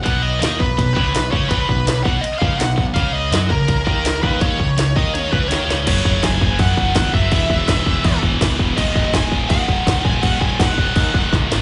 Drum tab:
CC |--------|--------|--------|--------|
RD |b-b-b-b-|b-b-b-b-|b-b-b-b-|b-b-b-b-|
SD |--o---o-|--o---o-|--o---o-|--o---oo|
T1 |--------|--------|--------|----o---|
BD |o--ooo-o|oo-o-o-o|o--ooo-o|oo-o-o--|

CC |x-x-x-x-|x-x-x-x-|x-x-x-x-|x-x-x---|
RD |--------|--------|--------|--------|
SD |--o---o-|--o---o-|--o---o-|--o---oo|
T1 |--------|--------|--------|--------|
BD |oooooooo|oooooooo|oooooooo|ooooooo-|